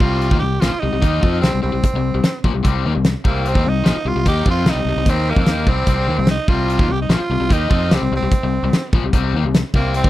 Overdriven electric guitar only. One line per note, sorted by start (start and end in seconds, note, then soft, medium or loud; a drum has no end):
0.01 0.30 C3 medium
0.01 0.31 G3 medium
0.01 0.31 C4 medium
0.31 0.40 D#3 medium
0.31 0.41 A#3 medium
0.41 0.57 C3 medium
0.41 0.57 G3 medium
0.62 0.71 A#2 medium
0.62 0.71 F3 loud
0.72 muted overdriven electric guitar stroke medium
0.83 0.92 C3 medium
0.83 0.92 G3 medium
0.93 1.01 C3 medium
0.93 1.02 G3 medium
1.02 1.21 D#3 medium
1.02 1.21 A#3 medium
1.02 1.21 D#4 medium
1.21 1.41 F3 medium
1.21 1.41 C4 medium
1.21 1.42 F4 medium
1.41 1.51 C3 medium
1.41 1.51 G3 loud
1.53 1.61 C3 medium
1.53 1.62 G3 medium
1.62 1.71 C3 medium
1.62 1.71 G3 medium
1.72 1.83 C3 medium
1.72 1.83 G3 medium
1.85 muted overdriven electric guitar stroke medium
1.96 2.11 C3 medium
1.96 2.11 G3 medium
2.14 2.23 C3 medium
2.14 2.24 G3 medium
2.24 muted overdriven electric guitar stroke medium
2.45 2.54 A#2 medium
2.45 2.54 F3 medium
2.54 2.62 C3 medium
2.54 2.63 G3 medium
2.63 2.83 C3 medium
2.63 2.84 G3 medium
2.63 2.84 C4 medium
2.86 2.95 D#3 medium
2.86 2.94 A#3 medium
2.95 3.11 C3 medium
2.95 3.11 G3 medium
3.25 3.53 C3 medium
3.25 3.54 G3 medium
3.25 3.55 C4 medium
3.54 3.64 D#3 medium
3.54 3.65 A#3 medium
3.65 3.81 C3 medium
3.65 3.82 G3 medium
3.84 3.94 A#2 medium
3.84 3.95 F3 loud
3.96 muted overdriven electric guitar stroke soft
4.06 4.15 C3 medium
4.06 4.15 G3 medium
4.16 4.25 C3 medium
4.16 4.26 G3 medium
4.26 4.46 D#3 medium
4.26 4.46 A#3 medium
4.26 4.46 D#4 loud
4.46 4.65 F3 medium
4.46 4.66 C4 medium
4.46 4.67 F4 loud
4.66 4.76 C3 medium
4.66 4.76 G3 medium
4.79 4.88 C3 medium
4.79 4.88 G3 medium
4.89 4.97 C3 medium
4.89 4.97 G3 medium
4.98 5.08 C3 medium
4.98 5.08 G3 medium
5.09 5.38 D#3 medium
5.09 5.38 A#3 medium
5.09 5.38 D#4 loud
5.40 5.48 F3 medium
5.40 5.49 C4 medium
5.49 5.67 D#3 medium
5.49 5.68 A#3 medium
5.49 5.68 D#4 medium
5.67 5.86 C3 medium
5.67 5.88 G3 medium
5.67 5.88 C4 medium
5.87 6.07 C3 medium
5.87 6.08 G3 medium
5.87 6.08 C4 loud
6.08 6.17 D#3 medium
6.08 6.18 A#3 medium
6.18 6.35 C3 soft
6.18 6.35 G3 medium
6.49 6.78 C3 medium
6.49 6.79 G3 medium
6.49 6.80 C4 medium
6.79 6.89 D#3 medium
6.79 6.89 A#3 medium
6.89 7.06 C3 medium
6.89 7.06 G3 medium
7.09 7.19 A#2 medium
7.09 7.20 F3 medium
7.20 muted overdriven electric guitar stroke soft
7.31 7.39 C3 medium
7.31 7.40 G3 medium
7.40 7.49 C3 medium
7.40 7.50 G3 medium
7.50 7.69 D#3 medium
7.50 7.69 A#3 medium
7.50 7.70 D#4 medium
7.70 7.90 F3 medium
7.70 7.90 C4 medium
7.70 7.90 F4 medium
7.90 8.00 C3 medium
7.90 8.01 G3 medium
8.02 8.12 C3 medium
8.02 8.12 G3 medium
8.13 8.22 C3 medium
8.13 8.22 G3 medium
8.23 8.32 C3 medium
8.23 8.33 G3 medium
8.33 muted overdriven electric guitar stroke medium
8.44 8.59 C3 medium
8.44 8.59 G3 medium
8.64 8.73 C3 medium
8.64 8.73 G3 medium
8.75 muted overdriven electric guitar stroke medium
8.95 9.03 A#2 medium
8.95 9.03 F3 medium
9.05 9.12 C3 medium
9.05 9.12 G3 medium
9.13 9.33 C3 medium
9.13 9.33 G3 medium
9.13 9.34 C4 medium
9.36 9.44 D#3 medium
9.36 9.44 A#3 medium
9.45 9.60 C3 medium
9.45 9.61 G3 medium
9.76 10.04 C3 medium
9.76 10.04 G3 medium
9.76 10.05 C4 medium
10.04 10.10 D#3 medium
10.04 10.10 A#3 loud